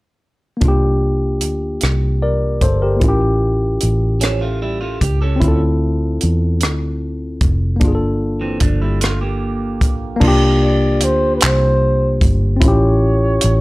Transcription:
0.57 2.95 A#3 soft
0.57 2.97 D4 soft
0.61 1.43 C2 medium
0.61 2.99 F4 medium
0.61 kick medium
0.61 closed hi-hat soft
0.68 2.22 G4 medium
1.41 1.78 D2 medium
1.41 closed hi-hat medium
1.81 2.58 C2 medium
1.81 cross-stick medium
1.81 closed hi-hat medium
2.22 2.60 A#4 soft
2.22 2.60 D5 medium
2.61 2.98 G1 medium
2.61 2.81 A4 medium
2.61 2.81 C5 medium
2.61 kick medium
2.61 closed hi-hat medium
2.82 3.07 G4 soft
2.82 3.20 A#4 soft
2.96 3.05 A#3 soft
2.96 5.37 E4 soft
3.01 3.78 A1 medium
3.01 5.38 C#4 medium
3.01 5.39 F4 medium
3.01 kick medium
3.01 closed hi-hat soft
3.08 5.41 G4 medium
3.81 4.98 A1 medium
3.81 closed hi-hat medium
4.21 4.41 F3 soft
4.21 4.40 C#4 medium
4.21 cross-stick medium
4.21 closed hi-hat medium
4.41 4.61 A3 medium
4.41 4.60 F4 medium
4.62 4.81 G3 medium
4.62 4.80 E4 medium
4.81 5.01 A3 medium
4.81 5.00 F4 medium
5.01 5.38 C#2 medium
5.01 5.20 G4 medium
5.01 kick medium
5.01 closed hi-hat medium
5.22 5.60 C#4 medium
5.22 5.60 A4 medium
5.36 7.75 C4 medium
5.40 6.18 D2 medium
5.40 7.77 E4 medium
5.40 7.79 F4 medium
5.40 kick medium
5.40 closed hi-hat medium
5.48 7.81 A4 medium
6.21 6.64 E2 medium
6.21 closed hi-hat medium
6.61 7.44 D2 medium
6.61 cross-stick medium
6.61 closed hi-hat medium
7.41 7.82 F1 medium
7.41 kick medium
7.41 closed hi-hat medium
7.76 10.15 A#3 medium
7.76 10.17 D4 medium
7.81 8.58 G1 medium
7.81 10.19 F4 medium
7.81 kick loud
7.81 closed hi-hat medium
7.88 7.91 G#4 medium
7.95 10.24 A4 medium
8.41 8.60 E3 soft
8.41 8.60 C4 medium
8.60 9.82 G1 medium
8.60 8.80 F3 medium
8.60 8.80 D4 medium
8.60 kick medium
8.60 closed hi-hat medium
8.82 9.01 G3 medium
8.82 9.01 E4 medium
9.01 9.21 A3 medium
9.01 9.20 F4 medium
9.01 cross-stick medium
9.01 closed hi-hat medium
9.21 10.18 A#3 medium
9.21 10.17 G4 medium
9.81 10.18 A#1 medium
9.81 kick medium
9.81 closed hi-hat medium
10.16 12.55 A#3 medium
10.20 11.03 C2 loud
10.20 12.57 D4 medium
10.20 12.59 F4 medium
10.20 kick loud
10.20 crash loud
10.28 12.61 G4 medium
10.63 11.06 D5 medium
11.01 11.39 D2 medium
11.01 11.35 C5 medium
11.01 closed hi-hat medium
11.36 11.45 B4 medium
11.41 12.18 C2 loud
11.41 12.23 C5 medium
11.41 clap loud
11.41 closed hi-hat medium
12.21 12.58 G1 medium
12.21 kick loud
12.21 closed hi-hat medium
12.57 12.66 C4 medium
12.57 13.61 E4 medium
12.62 13.38 A1 loud
12.62 13.61 C#4 medium
12.62 13.61 F4 medium
12.62 13.61 C#5 medium
12.62 kick loud
12.62 closed hi-hat medium
12.68 13.61 G4 medium
13.41 13.61 A1 medium
13.41 closed hi-hat medium

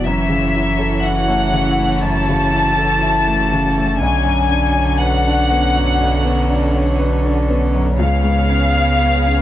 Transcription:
0.04 4.03 F#1 medium
0.04 2.00 F#2 medium
0.04 3.97 E3 medium
0.04 4.01 C#4 soft
0.04 3.97 E4 medium
0.04 3.97 F#4 medium
0.04 3.99 C#5 medium
0.04 1.04 E5 medium
0.29 0.70 C#3 soft
0.56 0.95 E4 soft
0.79 1.19 A4 soft
1.02 1.43 E4 soft
1.02 2.02 F#5 medium
1.28 1.68 A3 soft
1.53 1.93 C#3 soft
1.78 2.18 A3 soft
2.03 3.97 F#2 medium
2.03 4.01 A5 loud
2.29 2.69 C#3 soft
2.53 2.93 E4 soft
2.77 3.17 A4 medium
3.02 3.42 E4 medium
3.27 3.67 A3 soft
3.52 3.92 C#3 soft
3.78 4.02 A3 soft
4.00 5.97 B1 medium
4.00 8.00 B1 medium
4.00 7.99 D3 medium
4.00 7.95 D3 medium
4.00 7.96 C#4 medium
4.00 7.96 F#4 medium
4.00 7.95 C#5 medium
4.00 4.98 G#5 medium
4.25 4.65 F#2 soft
4.51 4.90 D4 soft
4.75 5.15 C#5 soft
5.00 5.40 B4 medium
5.00 7.00 F#5 medium
5.27 5.66 D4 soft
5.51 5.91 B3 medium
5.76 6.16 F#2 soft
6.02 7.96 B1 medium
6.25 6.65 B3 soft
6.50 6.90 D4 soft
6.74 7.14 C#5 soft
6.99 7.39 B4 medium
7.24 7.64 D4 soft
7.50 7.90 B3 soft
7.75 8.00 F#2 soft
7.98 9.42 C#2 medium
7.98 9.42 C#3 medium
7.98 9.42 B3 medium
7.98 9.42 G#4 medium
7.98 9.42 C#5 medium
7.98 9.42 F5 loud
8.24 8.65 G#2 soft
8.49 8.90 C#4 soft
8.76 9.16 C#5 soft
9.01 9.41 B4 soft
9.26 9.42 C#4 soft

